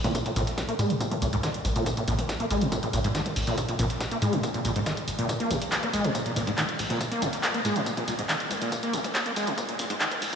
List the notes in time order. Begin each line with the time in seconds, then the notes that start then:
Already playing: A#1
0.04 A#2, snare, closed hi-hat, mid tom
0.15 A#2, kick, closed hi-hat, tambourine
0.26 A#2, closed hi-hat
0.36 A#1 A#2, open hi-hat, tambourine
0.47 snare, closed hi-hat
0.58 kick, snare, closed hi-hat, mid tom, tambourine
0.69 A#3, closed hi-hat
0.79 A#2 G#3, open hi-hat, tambourine
0.90 A#2, closed hi-hat
1.00 A#2, kick, closed hi-hat, tambourine
1.11 A#2, closed hi-hat, mid tom
1.22 C#2 A#2, open hi-hat, tambourine
1.33 G#2, closed hi-hat
1.43 D#3, kick, snare, closed hi-hat, tambourine
1.54 closed hi-hat
1.65 A#1, open hi-hat, mid tom, tambourine
1.76 A#2, closed hi-hat
1.86 A#2, kick, closed hi-hat, tambourine
1.97 A#2, closed hi-hat
2.08 A#1 A#2, open hi-hat, tambourine
2.19 closed hi-hat, mid tom
2.29 kick, snare, closed hi-hat, tambourine
2.40 A#3, closed hi-hat
2.51 A#1 G#3, open hi-hat, tambourine
2.61 A#2, closed hi-hat
2.72 A#2, kick, closed hi-hat, mid tom, tambourine
2.83 A#2, closed hi-hat
2.93 A#1 A#2, open hi-hat, tambourine
3.04 G#2, closed hi-hat
3.15 D#3, kick, snare, closed hi-hat, tambourine
3.26 closed hi-hat, mid tom
3.36 A#1, open hi-hat
3.47 A#2, snare, closed hi-hat
3.58 A#2, kick, closed hi-hat, tambourine
3.69 A#2, closed hi-hat
3.79 A#1 A#2, open hi-hat, mid tom, tambourine
3.90 snare, closed hi-hat
4.00 kick, snare, closed hi-hat, tambourine
4.11 A#3, closed hi-hat
4.22 A#2 G#3, open hi-hat, tambourine
4.33 A#2, closed hi-hat, mid tom
4.43 A#2, kick, closed hi-hat, tambourine
4.54 A#2, closed hi-hat
4.65 A#1 A#2, open hi-hat, tambourine
4.76 G#2, closed hi-hat
4.86 D#3, kick, snare, closed hi-hat, mid tom, tambourine
4.97 closed hi-hat
5.08 G#1, open hi-hat, tambourine
5.19 A#2, closed hi-hat
5.29 A#2, kick, closed hi-hat, mid tom, tambourine
5.40 A#3, closed hi-hat
5.50 A#1 A#2, open hi-hat, tambourine
5.62 closed hi-hat
5.72 kick, snare, clap, closed hi-hat, tambourine
5.83 A#3, closed hi-hat, mid tom
5.93 A#1 G#3, open hi-hat, tambourine
6.04 A#2, closed hi-hat
6.15 A#2, kick, closed hi-hat, tambourine
6.26 A#2, closed hi-hat
6.36 A#1 A#2, open hi-hat, mid tom, tambourine
6.47 G#2, closed hi-hat
6.58 D#3, kick, snare, clap, closed hi-hat, tambourine
6.69 closed hi-hat
6.79 A#1, open hi-hat
6.90 A#2, snare, closed hi-hat, mid tom
7.00 A#2, kick, closed hi-hat, tambourine
7.11 A#3, closed hi-hat
7.22 A#1 A#2, open hi-hat, tambourine
7.33 snare, closed hi-hat
7.43 kick, snare, clap, closed hi-hat, mid tom, tambourine
7.54 A#3, closed hi-hat
7.65 A#2 G#3, open hi-hat, tambourine
7.76 A#2, closed hi-hat
7.86 A#2, kick, closed hi-hat, tambourine
7.97 A#2, closed hi-hat, mid tom
8.08 C#2 A#2, open hi-hat, tambourine
8.19 G#2, closed hi-hat
8.29 D#3, kick, snare, clap, closed hi-hat, tambourine
8.40 closed hi-hat
8.51 A#1, open hi-hat, mid tom, tambourine
8.61 A#2, closed hi-hat
8.72 A#2, kick, closed hi-hat, tambourine
8.83 A#3, closed hi-hat
8.93 A#1 A#2, open hi-hat, tambourine
9.04 closed hi-hat, mid tom
9.15 kick, snare, clap, closed hi-hat, tambourine
9.26 A#3, closed hi-hat
9.36 A#1 G#3, open hi-hat, tambourine
9.47 A#2, closed hi-hat
9.58 A#2, kick, closed hi-hat, mid tom, tambourine
9.69 A#2, closed hi-hat
9.79 A#1 A#2, open hi-hat, tambourine
9.90 G#2, closed hi-hat
10.00 D#3, kick, snare, clap, closed hi-hat, tambourine
10.12 closed hi-hat, mid tom
10.22 A#1, open hi-hat